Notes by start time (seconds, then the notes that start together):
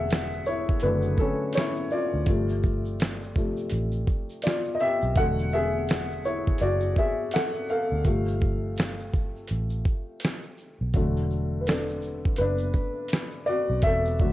Already playing: E1 D3 F#3 A3 G#4 A4 E5 F#5
0.09 snare, closed hi-hat, shaker
0.33 shaker
0.46 E4 C#5, shaker
0.69 kick, shaker
0.80 closed hi-hat, shaker
0.82 F#1 D3 F#3 A3 D4 B4, shaker
1.02 shaker
1.17 kick, shaker
1.19 C#4 A4, shaker
1.53 closed hi-hat, shaker
1.54 E4 C#5, snare, shaker
1.75 shaker
1.90 F4 D5, shaker
2.14 D2
2.26 G1 C3 F3 A3, kick, closed hi-hat, shaker
2.49 shaker
2.63 kick, shaker
2.65 shaker
2.85 shaker
2.99 snare, closed hi-hat, shaker
3.22 shaker
3.36 C3 F3 A3, kick, shaker
3.57 shaker
3.59 shaker
3.69 closed hi-hat, shaker
3.71 A1, shaker
3.91 shaker
4.07 kick, shaker
4.30 shaker
4.42 F4 D5, closed hi-hat, shaker
4.47 snare
4.64 shaker
4.75 D#5
4.80 G4 E5, shaker
5.01 B1, shaker
5.16 E1 D3 F#3 A3 A4 F#5, kick, closed hi-hat, shaker
5.39 shaker
5.52 E5, shaker
5.54 G#4, shaker
5.88 closed hi-hat, shaker
5.89 snare, shaker
6.11 shaker
6.25 E4 C#5, shaker
6.48 kick, shaker
6.58 closed hi-hat, shaker
6.60 F#1 F#4 D5, shaker
6.80 shaker
6.96 G#4 E5, kick, shaker
7.31 A4 F#5, closed hi-hat, shaker
7.36 snare
7.54 shaker
7.68 A4 F5, shaker
7.92 D2
8.05 G1 C3 F3 A3, kick, closed hi-hat, shaker
8.28 shaker
8.41 kick, shaker
8.43 shaker
8.76 snare, closed hi-hat, shaker
8.99 shaker
9.13 kick, shaker
9.36 shaker
9.47 A1, closed hi-hat, shaker
9.70 shaker
9.85 kick, shaker
10.20 closed hi-hat, shaker
10.25 snare
10.42 shaker
10.57 shaker
10.81 B1
10.94 E1 D3 F#3 A3, kick, closed hi-hat, shaker
11.17 shaker
11.30 shaker
11.32 shaker
11.61 B4
11.66 D4 A4, snare, closed hi-hat, shaker
11.89 shaker
12.02 shaker
12.25 kick, shaker
12.37 closed hi-hat, shaker
12.38 F#1 D4 B4, shaker
12.58 shaker
12.74 kick, shaker
12.75 shaker
13.08 closed hi-hat, shaker
13.11 snare, shaker
13.31 shaker
13.46 F#4 D5, shaker
13.70 B1
13.82 E1 A4 E5, kick, closed hi-hat, shaker
14.06 shaker
14.19 D3 F#3, kick, shaker
14.22 A3, shaker